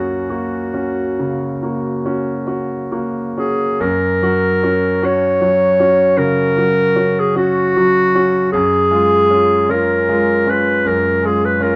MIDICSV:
0, 0, Header, 1, 3, 480
1, 0, Start_track
1, 0, Key_signature, 6, "major"
1, 0, Tempo, 882353
1, 2074, Tempo, 825309
1, 2075, Time_signature, 12, 3, 24, 8
1, 2554, Tempo, 778210
1, 5914, Tempo, 763359
1, 6966, End_track
2, 0, Start_track
2, 0, Title_t, "Clarinet"
2, 0, Program_c, 0, 71
2, 0, Note_on_c, 0, 66, 51
2, 1354, Note_off_c, 0, 66, 0
2, 1837, Note_on_c, 0, 68, 61
2, 2072, Note_on_c, 0, 70, 79
2, 2081, Note_off_c, 0, 68, 0
2, 2809, Note_on_c, 0, 73, 81
2, 2819, Note_off_c, 0, 70, 0
2, 3503, Note_on_c, 0, 70, 88
2, 3512, Note_off_c, 0, 73, 0
2, 4131, Note_on_c, 0, 68, 69
2, 4141, Note_off_c, 0, 70, 0
2, 4235, Note_off_c, 0, 68, 0
2, 4238, Note_on_c, 0, 66, 95
2, 4938, Note_off_c, 0, 66, 0
2, 4949, Note_on_c, 0, 68, 84
2, 5679, Note_on_c, 0, 70, 71
2, 5689, Note_off_c, 0, 68, 0
2, 6173, Note_on_c, 0, 71, 75
2, 6182, Note_off_c, 0, 70, 0
2, 6409, Note_on_c, 0, 70, 72
2, 6418, Note_off_c, 0, 71, 0
2, 6651, Note_on_c, 0, 68, 69
2, 6661, Note_off_c, 0, 70, 0
2, 6774, Note_on_c, 0, 71, 65
2, 6784, Note_off_c, 0, 68, 0
2, 6882, Note_on_c, 0, 70, 64
2, 6892, Note_off_c, 0, 71, 0
2, 6966, Note_off_c, 0, 70, 0
2, 6966, End_track
3, 0, Start_track
3, 0, Title_t, "Grand piano"
3, 0, Program_c, 1, 0
3, 0, Control_c, 1, 64, 127
3, 0, Note_on_c, 1, 42, 44
3, 0, Note_on_c, 1, 58, 32
3, 0, Note_on_c, 1, 61, 28
3, 0, Note_on_c, 1, 66, 32
3, 138, Note_off_c, 1, 61, 0
3, 140, Note_off_c, 1, 66, 0
3, 159, Note_off_c, 1, 58, 0
3, 159, Note_on_c, 1, 58, 31
3, 163, Note_on_c, 1, 66, 35
3, 382, Note_off_c, 1, 58, 0
3, 384, Note_off_c, 1, 66, 0
3, 402, Note_on_c, 1, 61, 29
3, 403, Note_on_c, 1, 66, 30
3, 621, Note_off_c, 1, 42, 0
3, 623, Note_off_c, 1, 61, 0
3, 624, Note_off_c, 1, 66, 0
3, 650, Note_on_c, 1, 49, 30
3, 884, Note_on_c, 1, 58, 28
3, 885, Note_on_c, 1, 66, 28
3, 1029, Note_off_c, 1, 49, 0
3, 1099, Note_off_c, 1, 58, 0
3, 1099, Note_off_c, 1, 66, 0
3, 1118, Note_on_c, 1, 61, 32
3, 1120, Note_on_c, 1, 66, 32
3, 1332, Note_off_c, 1, 61, 0
3, 1333, Note_off_c, 1, 66, 0
3, 1343, Note_on_c, 1, 61, 33
3, 1346, Note_on_c, 1, 66, 34
3, 1565, Note_off_c, 1, 61, 0
3, 1566, Note_off_c, 1, 66, 0
3, 1587, Note_on_c, 1, 58, 30
3, 1588, Note_on_c, 1, 66, 33
3, 1812, Note_off_c, 1, 58, 0
3, 1813, Note_off_c, 1, 66, 0
3, 1836, Note_on_c, 1, 61, 28
3, 1836, Note_on_c, 1, 66, 29
3, 2052, Note_off_c, 1, 61, 0
3, 2052, Note_off_c, 1, 66, 0
3, 2069, Note_on_c, 1, 42, 60
3, 2084, Control_c, 1, 64, 0
3, 2203, Control_c, 1, 64, 127
3, 2313, Note_on_c, 1, 54, 37
3, 2317, Note_on_c, 1, 66, 46
3, 2529, Note_off_c, 1, 54, 0
3, 2531, Note_off_c, 1, 66, 0
3, 2551, Note_on_c, 1, 61, 39
3, 2553, Note_on_c, 1, 66, 41
3, 2774, Note_off_c, 1, 61, 0
3, 2775, Note_off_c, 1, 66, 0
3, 2792, Note_on_c, 1, 61, 41
3, 2795, Note_on_c, 1, 66, 44
3, 3013, Note_off_c, 1, 61, 0
3, 3014, Note_off_c, 1, 66, 0
3, 3031, Note_on_c, 1, 54, 38
3, 3033, Note_on_c, 1, 66, 41
3, 3248, Note_off_c, 1, 54, 0
3, 3248, Note_off_c, 1, 66, 0
3, 3268, Note_on_c, 1, 61, 38
3, 3270, Note_on_c, 1, 66, 42
3, 3481, Note_off_c, 1, 42, 0
3, 3482, Note_off_c, 1, 61, 0
3, 3483, Note_off_c, 1, 66, 0
3, 3501, Note_on_c, 1, 49, 44
3, 3748, Note_on_c, 1, 54, 31
3, 3751, Note_on_c, 1, 66, 37
3, 3889, Note_off_c, 1, 49, 0
3, 3967, Note_off_c, 1, 54, 0
3, 3969, Note_off_c, 1, 66, 0
3, 3986, Note_on_c, 1, 61, 40
3, 3987, Note_on_c, 1, 66, 44
3, 4209, Note_off_c, 1, 61, 0
3, 4209, Note_off_c, 1, 66, 0
3, 4228, Note_on_c, 1, 61, 39
3, 4232, Note_on_c, 1, 66, 46
3, 4449, Note_off_c, 1, 61, 0
3, 4451, Note_off_c, 1, 66, 0
3, 4480, Note_on_c, 1, 54, 42
3, 4484, Note_on_c, 1, 66, 44
3, 4693, Note_off_c, 1, 54, 0
3, 4695, Note_off_c, 1, 66, 0
3, 4721, Note_on_c, 1, 61, 36
3, 4723, Note_on_c, 1, 66, 41
3, 4931, Note_off_c, 1, 61, 0
3, 4932, Note_off_c, 1, 66, 0
3, 4958, Note_on_c, 1, 42, 58
3, 4960, Control_c, 1, 64, 0
3, 5048, Control_c, 1, 64, 127
3, 5188, Note_on_c, 1, 56, 41
3, 5190, Note_on_c, 1, 65, 43
3, 5404, Note_off_c, 1, 56, 0
3, 5406, Note_off_c, 1, 65, 0
3, 5431, Note_on_c, 1, 61, 34
3, 5433, Note_on_c, 1, 65, 44
3, 5648, Note_off_c, 1, 61, 0
3, 5650, Note_off_c, 1, 65, 0
3, 5671, Note_on_c, 1, 61, 39
3, 5671, Note_on_c, 1, 65, 44
3, 5889, Note_off_c, 1, 61, 0
3, 5889, Note_off_c, 1, 65, 0
3, 5915, Note_on_c, 1, 56, 40
3, 5917, Note_on_c, 1, 65, 44
3, 6133, Note_off_c, 1, 56, 0
3, 6134, Note_off_c, 1, 65, 0
3, 6152, Note_on_c, 1, 61, 38
3, 6157, Note_on_c, 1, 65, 44
3, 6370, Note_off_c, 1, 61, 0
3, 6373, Note_off_c, 1, 65, 0
3, 6375, Note_off_c, 1, 42, 0
3, 6396, Note_on_c, 1, 42, 45
3, 6633, Note_on_c, 1, 56, 33
3, 6639, Note_on_c, 1, 65, 37
3, 6849, Note_off_c, 1, 56, 0
3, 6852, Note_off_c, 1, 65, 0
3, 6868, Note_on_c, 1, 61, 41
3, 6869, Note_on_c, 1, 65, 44
3, 6966, Note_off_c, 1, 42, 0
3, 6966, Note_off_c, 1, 61, 0
3, 6966, Note_off_c, 1, 65, 0
3, 6966, End_track
0, 0, End_of_file